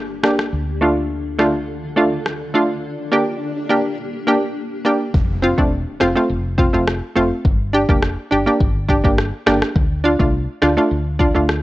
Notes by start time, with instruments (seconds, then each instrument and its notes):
Already playing: fretless electric bass G1, ambient pad A#3 D4 G4, downlifter
0.23 synth pluck A#3 D4 G4, cross-stick
0.39 cross-stick
0.52 fretless electric bass D2, ambient pad D3 F4 A4, swell
0.81 synth pluck A3 D4 F4
1.39 synth pluck A3 D4 F4, cross-stick
1.96 synth pluck A3 D4 F4
2.26 cross-stick
2.54 synth pluck A3 D4 F4
2.83 ambient pad A#3 D4 G4
3.12 synth pluck A#3 D4 G4
3.69 synth pluck A#3 D4 G4
4.27 synth pluck A#3 D4 G4
4.85 synth pluck A#3 D4 G4
5.14 fretless electric bass F1, kick, impact
5.42 synth pluck C4 F4
5.58 fretless electric bass E1, synth pluck A3 C4 D4, kick
6.00 fretless electric bass F1, synth pluck C4 F4, cross-stick
6.16 synth pluck A3 C4 F4
6.30 fretless electric bass F1
6.58 synth pluck C4 F4, kick
6.73 fretless electric bass F1, synth pluck A3 C4 F4
6.87 cross-stick
7.16 fretless electric bass F1, synth pluck A3 C4 F4
7.45 fretless electric bass G1, kick
7.73 synth pluck D4 G4
7.89 fretless electric bass F1, synth pluck A#3 D4 G4, kick
8.02 cross-stick
8.31 fretless electric bass G1, synth pluck D4 G4
8.46 synth pluck A#3 D4 G4
8.60 fretless electric bass G1, kick
8.89 synth pluck D4 G4, kick
9.04 fretless electric bass G1, synth pluck A#3 D4 G4, kick
9.18 cross-stick
9.46 fretless electric bass G1, synth pluck A#3 D4 G4, cross-stick
9.62 cross-stick
9.76 fretless electric bass D2, kick
10.04 synth pluck D4 F4
10.19 fretless electric bass C2, synth pluck A3 D4 F4, kick
10.62 fretless electric bass D2, synth pluck D4 F4, cross-stick
10.77 synth pluck A3 D4 F4
10.91 fretless electric bass D2
11.19 synth pluck D4 F4, kick
11.35 fretless electric bass D2, synth pluck A3 D4 F4
11.49 cross-stick